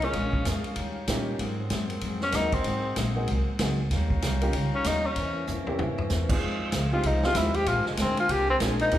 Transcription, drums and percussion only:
0.02 ride
0.13 kick, ride
0.33 kick
0.45 kick, snare, hi-hat pedal, ride
0.64 ride
0.76 kick, ride
1.07 kick, snare, hi-hat pedal, ride
1.39 kick, ride
1.70 kick, snare, hi-hat pedal, ride
1.90 ride
2.01 kick, ride
2.21 snare
2.32 kick, snare, hi-hat pedal, ride
2.52 kick, ride
2.64 kick, ride
2.96 kick, snare, hi-hat pedal, ride
3.27 kick, ride
3.59 kick, snare, hi-hat pedal, ride
3.91 kick, snare, ride
4.10 kick
4.22 snare, hi-hat pedal, ride
4.41 ride
4.53 kick, ride
4.84 kick, snare, hi-hat pedal, ride
5.16 kick, ride
5.47 floor tom, hi-hat pedal
5.67 floor tom
5.79 floor tom
5.98 floor tom
6.10 snare, hi-hat pedal
6.29 kick, crash
6.41 kick
6.72 kick, snare, hi-hat pedal, ride
7.03 kick, ride
7.23 snare
7.35 kick, snare, hi-hat pedal, ride
7.54 ride
7.66 kick, ride
7.86 snare
7.97 kick, snare, hi-hat pedal, ride
8.17 ride
8.29 kick, ride
8.60 kick, snare, hi-hat pedal, ride
8.79 ride
8.91 kick, ride

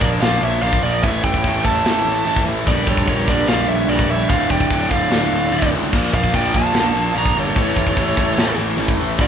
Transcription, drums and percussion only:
0.01 kick
0.22 snare, china
0.62 china
0.73 kick
1.03 kick, china
1.24 kick
1.34 kick
1.44 kick, china
1.65 kick
1.85 snare, china
2.27 china
2.36 kick
2.67 kick, china
2.87 kick
2.97 kick
3.07 kick, china
3.28 kick
3.48 snare, china
3.89 china
3.99 kick
4.29 kick, china
4.50 kick
4.60 kick
4.71 kick, china
4.91 kick
5.11 snare, china
5.52 china
5.62 kick
5.93 kick, crash, china
6.13 kick
6.24 kick
6.34 kick, china
6.54 kick
6.74 snare, china
7.15 china
7.25 kick
7.56 kick, china
7.76 kick
7.87 kick
7.97 kick, china
8.17 kick
8.38 snare, china
8.78 china
8.88 kick
9.18 kick, china

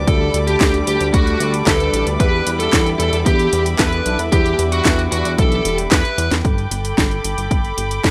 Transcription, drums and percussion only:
0.07 kick, closed hi-hat
0.34 closed hi-hat
0.48 closed hi-hat
0.61 kick, snare, clap, closed hi-hat
0.74 closed hi-hat
0.87 closed hi-hat
1.01 closed hi-hat
1.14 kick, closed hi-hat
1.27 closed hi-hat
1.40 closed hi-hat
1.54 closed hi-hat
1.67 kick, snare, clap, closed hi-hat
1.80 closed hi-hat
1.94 closed hi-hat
2.07 closed hi-hat
2.20 kick, closed hi-hat
2.47 closed hi-hat
2.60 closed hi-hat
2.73 kick, snare, clap, closed hi-hat
2.86 closed hi-hat
3.00 closed hi-hat
3.13 closed hi-hat
3.26 kick, closed hi-hat
3.39 closed hi-hat
3.53 closed hi-hat
3.66 closed hi-hat
3.79 kick, snare, clap, closed hi-hat
3.92 closed hi-hat
4.06 closed hi-hat
4.19 closed hi-hat
4.32 kick, closed hi-hat
4.46 closed hi-hat
4.59 closed hi-hat
4.72 closed hi-hat
4.85 kick, snare, clap, closed hi-hat
4.99 closed hi-hat
5.12 closed hi-hat
5.25 closed hi-hat
5.38 kick, closed hi-hat
5.52 closed hi-hat
5.65 closed hi-hat
5.78 closed hi-hat
5.92 kick, snare, clap, closed hi-hat
6.05 closed hi-hat
6.18 closed hi-hat
6.31 snare, closed hi-hat
6.45 kick, closed hi-hat
6.58 closed hi-hat
6.71 closed hi-hat
6.85 closed hi-hat
6.98 kick, snare, closed hi-hat
7.11 closed hi-hat
7.24 closed hi-hat
7.38 closed hi-hat
7.51 kick, closed hi-hat
7.64 closed hi-hat
7.78 closed hi-hat
7.91 closed hi-hat
8.04 kick, snare, closed hi-hat

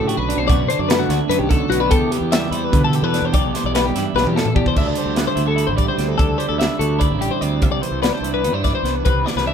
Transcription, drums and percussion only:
0.09 closed hi-hat
0.30 closed hi-hat
0.50 kick, closed hi-hat
0.70 closed hi-hat
0.90 snare, closed hi-hat
1.10 snare, closed hi-hat
1.31 closed hi-hat
1.51 kick, closed hi-hat
1.72 closed hi-hat
1.91 kick, closed hi-hat
2.12 closed hi-hat
2.32 snare, closed hi-hat
2.53 closed hi-hat
2.73 kick, closed hi-hat
2.93 closed hi-hat
3.14 snare, closed hi-hat
3.34 kick, closed hi-hat
3.55 snare, closed hi-hat
3.75 snare, closed hi-hat
3.96 snare, closed hi-hat
4.18 snare
4.27 high tom
4.38 snare
4.46 mid tom
4.56 kick
4.66 kick
4.76 kick, crash
4.95 closed hi-hat
5.16 snare, closed hi-hat
5.37 closed hi-hat
5.58 closed hi-hat
5.78 kick, closed hi-hat
5.99 snare, closed hi-hat
6.19 kick, closed hi-hat
6.40 closed hi-hat
6.61 snare, closed hi-hat
6.81 closed hi-hat
7.01 kick, closed hi-hat
7.22 closed hi-hat
7.42 closed hi-hat
7.62 kick, closed hi-hat
7.83 closed hi-hat
8.03 snare, closed hi-hat
8.24 closed hi-hat
8.44 closed hi-hat
8.64 kick, snare, closed hi-hat
8.86 snare, closed hi-hat
9.06 kick, closed hi-hat
9.27 snare
9.38 snare

